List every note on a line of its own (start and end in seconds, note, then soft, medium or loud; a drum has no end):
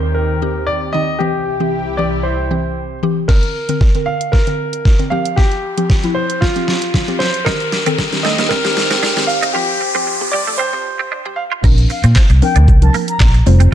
0.00 1.18 D#2 medium
0.00 0.26 D#3 medium
0.00 1.18 D#3 medium
0.00 0.26 C4 medium
0.00 1.16 C4 medium
0.00 1.16 G4 medium
0.00 0.26 A#4 medium
0.14 0.64 A#4 medium
0.42 0.78 D#3 medium
0.42 0.78 C4 medium
0.42 0.79 G4 medium
0.67 0.94 D5 loud
0.93 1.13 D#3 medium
0.93 1.13 C4 medium
0.93 1.13 D#4 medium
0.93 1.20 D#5 loud
1.19 3.27 C2 medium
1.19 3.27 C3 medium
1.19 1.47 E3 medium
1.19 1.47 C4 medium
1.19 3.27 E4 medium
1.19 2.00 G4 medium
1.19 3.27 G4 medium
1.19 1.47 G4 medium
1.60 1.87 E3 medium
1.60 1.87 C4 medium
1.60 1.87 G4 medium
1.97 2.35 E3 medium
1.97 2.35 C4 medium
1.97 2.35 G4 medium
1.97 2.25 D5 medium
2.23 2.98 C5 medium
2.51 2.87 E3 medium
2.51 2.87 C4 medium
2.51 2.87 G4 medium
3.03 3.21 E3 medium
3.03 3.21 C4 medium
3.03 3.21 G4 loud
3.28 3.56 D3 medium
3.28 3.56 C4 medium
3.28 4.09 A#4 medium
3.28 3.56 A#4 medium
3.28 kick loud
3.28 snare medium
3.28 crash loud
3.28 riser medium
3.43 closed hi-hat soft
3.69 3.86 D3 medium
3.69 3.86 C4 medium
3.69 3.86 A#4 medium
3.69 closed hi-hat medium
3.81 kick loud
3.81 snare medium
3.95 4.30 D3 medium
3.95 4.30 C4 medium
3.95 4.30 A#4 medium
3.95 closed hi-hat medium
4.06 4.33 F5 loud
4.21 closed hi-hat medium
4.32 5.13 A#4 medium
4.32 kick loud
4.32 snare medium
4.47 4.82 D3 medium
4.47 4.82 C4 medium
4.47 4.82 A#4 medium
4.47 closed hi-hat medium
4.73 closed hi-hat medium
4.85 kick loud
4.85 snare medium
4.99 5.12 D3 medium
4.99 5.10 C4 medium
4.99 5.12 A#4 medium
4.99 closed hi-hat soft
5.10 5.64 F3 medium
5.10 5.64 C4 medium
5.10 5.64 G4 medium
5.10 5.38 F5 loud
5.25 closed hi-hat medium
5.36 6.11 G4 medium
5.36 kick loud
5.36 snare medium
5.52 closed hi-hat medium
5.77 5.95 F3 medium
5.77 5.95 C4 medium
5.77 5.95 G4 medium
5.77 closed hi-hat medium
5.90 kick loud
5.90 snare medium
6.03 6.39 F3 medium
6.03 6.39 C4 medium
6.03 6.39 E4 medium
6.03 closed hi-hat medium
6.15 6.42 C5 medium
6.30 closed hi-hat medium
6.41 7.22 F4 medium
6.41 kick loud
6.41 snare medium
6.56 6.91 F3 medium
6.56 6.91 C4 medium
6.56 6.91 G4 medium
6.56 closed hi-hat medium
6.68 snare medium
6.82 closed hi-hat medium
6.94 kick loud
6.94 snare medium
7.08 7.35 F3 medium
7.08 7.35 C4 medium
7.08 7.35 G4 medium
7.08 closed hi-hat soft
7.19 7.47 C5 loud
7.19 snare medium
7.34 closed hi-hat medium
7.45 9.53 D#2 medium
7.45 9.53 D#3 medium
7.45 7.73 D#3 medium
7.45 11.60 C4 medium
7.45 7.73 C4 medium
7.45 7.56 D#4 medium
7.45 11.60 G4 medium
7.45 7.73 G4 medium
7.45 8.26 A#4 loud
7.45 kick loud
7.45 snare loud
7.45 shaker medium
7.60 closed hi-hat medium
7.60 shaker medium
7.72 muted clean electric guitar stroke soft
7.72 snare medium
7.72 open hi-hat medium
7.72 shaker soft
7.86 8.04 D#3 medium
7.86 8.04 C4 medium
7.86 7.95 C4 medium
7.86 8.04 A4 medium
7.86 closed hi-hat medium
7.86 shaker medium
7.99 muted clean electric guitar stroke soft
7.99 kick loud
7.99 snare loud
7.99 shaker medium
8.12 8.47 D#3 medium
8.12 8.48 C4 medium
8.12 8.48 G4 medium
8.12 snare loud
8.12 closed hi-hat medium
8.12 shaker medium
8.23 8.34 A3 medium
8.23 8.51 D#5 loud
8.23 snare loud
8.23 open hi-hat medium
8.23 shaker soft
8.38 8.47 A#3 medium
8.38 snare loud
8.38 closed hi-hat medium
8.38 shaker medium
8.49 8.61 C4 medium
8.49 9.31 A#4 loud
8.49 kick loud
8.49 snare loud
8.49 shaker medium
8.64 9.00 D#3 medium
8.64 9.00 C4 medium
8.64 9.00 G4 medium
8.64 muted clean electric guitar stroke soft
8.64 snare loud
8.64 closed hi-hat medium
8.64 shaker medium
8.77 snare loud
8.77 open hi-hat medium
8.77 shaker soft
8.91 8.99 C4 medium
8.91 snare loud
8.91 closed hi-hat medium
8.91 shaker medium
9.03 9.13 D4 medium
9.03 snare loud
9.03 shaker medium
9.17 9.43 D#3 medium
9.17 9.44 C4 medium
9.17 9.44 G4 medium
9.17 muted clean electric guitar stroke soft
9.17 snare loud
9.17 closed hi-hat soft
9.17 shaker soft
9.27 9.55 F5 loud
9.27 open hi-hat medium
9.27 shaker medium
9.43 9.51 D#4 medium
9.43 closed hi-hat medium
9.43 shaker medium
9.53 11.62 F2 medium
9.53 11.62 F3 medium
9.53 9.82 F3 medium
9.53 9.82 C4 medium
9.53 9.65 F4 medium
9.53 10.35 G4 medium
9.53 9.82 G4 medium
9.81 muted clean electric guitar stroke soft
9.95 10.12 F3 medium
9.95 10.04 C4 medium
9.95 10.12 C4 medium
9.95 10.13 G4 medium
10.07 muted clean electric guitar stroke soft
10.21 10.56 F3 medium
10.21 10.56 C4 medium
10.21 10.56 G4 medium
10.31 10.43 G3 medium
10.31 10.59 D5 medium
10.47 10.56 A3 medium
10.58 10.69 C4 medium
10.58 11.39 C5 loud
10.73 11.08 F3 medium
10.73 11.08 C4 medium
10.73 11.08 G4 medium
10.73 muted clean electric guitar stroke soft
10.99 11.08 C4 medium
11.12 11.22 D4 medium
11.25 11.52 F3 medium
11.25 11.52 C4 medium
11.25 11.52 G4 medium
11.25 muted clean electric guitar stroke soft
11.36 11.42 F5 medium
11.52 11.60 F4 medium
11.64 11.84 A#1 loud
11.64 12.17 F3 medium
11.64 11.74 A#3 medium
11.64 12.18 C4 medium
11.64 12.18 D4 medium
11.64 12.18 A#4 medium
11.64 kick loud
11.64 crash loud
11.64 shaker medium
11.78 closed hi-hat medium
11.78 shaker medium
11.90 12.02 F5 medium
11.90 muted clean electric guitar stroke soft
11.90 open hi-hat medium
11.90 shaker soft
12.04 12.13 A#2 loud
12.04 12.13 C4 medium
12.04 closed hi-hat medium
12.04 shaker medium
12.16 12.26 C4 medium
12.16 kick loud
12.16 snare loud
12.16 clap loud
12.16 shaker medium
12.30 12.39 C2 medium
12.30 muted clean electric guitar stroke soft
12.30 closed hi-hat medium
12.30 shaker medium
12.42 12.69 F3 medium
12.42 12.69 C4 medium
12.42 12.69 D4 medium
12.42 12.69 A#4 medium
12.42 12.54 G5 medium
12.42 open hi-hat medium
12.42 shaker soft
12.56 12.65 D2 medium
12.56 12.65 D4 medium
12.56 closed hi-hat medium
12.56 shaker medium
12.68 kick loud
12.68 shaker medium
12.82 13.44 F3 medium
12.82 13.44 C4 medium
12.82 13.44 D4 medium
12.82 13.44 A#4 medium
12.82 12.92 A5 medium
12.82 closed hi-hat medium
12.82 shaker medium
12.94 13.04 A#3 medium
12.94 open hi-hat medium
12.94 shaker medium
13.08 13.30 A#5 medium
13.08 closed hi-hat medium
13.08 shaker medium
13.20 13.40 A#1 loud
13.20 13.30 D4 medium
13.20 kick loud
13.20 snare medium
13.20 clap loud
13.20 shaker medium
13.34 muted clean electric guitar stroke soft
13.34 closed hi-hat medium
13.34 shaker medium
13.46 13.66 F1 loud
13.46 13.74 G3 loud
13.46 13.74 C4 medium
13.46 13.74 F4 medium
13.46 13.74 C5 loud
13.46 open hi-hat medium
13.46 shaker medium
13.60 13.69 C4 medium
13.60 closed hi-hat medium
13.60 shaker medium